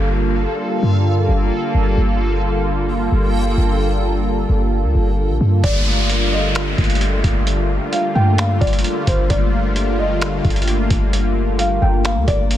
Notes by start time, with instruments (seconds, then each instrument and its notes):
Already playing: 808-style bass G1, analog synth pad D3 G3 A#3 F4 A4, synth texture A#3 A4 F5, downlifter
0.83 808-style bass G2
1.29 808-style bass G1
1.74 808-style bass G1
1.97 808-style bass G1, synth texture G5
3.12 808-style bass G1
3.58 808-style bass G1
4.49 808-style bass G1
4.83 808-style bass D2
4.95 808-style bass G1
5.29 808-style bass A#1
5.41 808-style bass G2
5.64 808-style bass G1, analog synth pad D3 G3 A3 A#3 F4, felt piano D5, kick, closed hi-hat, downlifter
6.09 closed hi-hat
6.32 felt piano D#5
6.55 finger snap, closed hi-hat
6.78 808-style bass G1, kick, closed hi-hat
6.84 closed hi-hat
6.90 closed hi-hat
6.95 closed hi-hat
7.01 closed hi-hat
7.24 808-style bass G1, kick, closed hi-hat
7.47 closed hi-hat
7.92 felt piano F5, closed hi-hat
8.15 808-style bass G2, felt piano G5
8.38 felt piano F5, finger snap, closed hi-hat
8.61 808-style bass G1, felt piano D5, kick, closed hi-hat
8.67 closed hi-hat
8.73 closed hi-hat
8.79 closed hi-hat
8.84 closed hi-hat
9.07 808-style bass G1, felt piano C5, kick, closed hi-hat
9.30 808-style bass G1, felt piano D5, kick, closed hi-hat
9.76 closed hi-hat
9.99 felt piano D#5
10.21 finger snap, closed hi-hat
10.45 808-style bass G1, kick, closed hi-hat
10.50 closed hi-hat
10.56 closed hi-hat
10.62 closed hi-hat
10.68 closed hi-hat
10.90 808-style bass G1, kick, closed hi-hat
11.13 closed hi-hat
11.59 felt piano F5, closed hi-hat
11.82 808-style bass G1, felt piano G5
12.05 felt piano F5, finger snap, closed hi-hat
12.16 808-style bass D2
12.28 808-style bass G1, felt piano D5, kick, closed hi-hat
12.51 closed hi-hat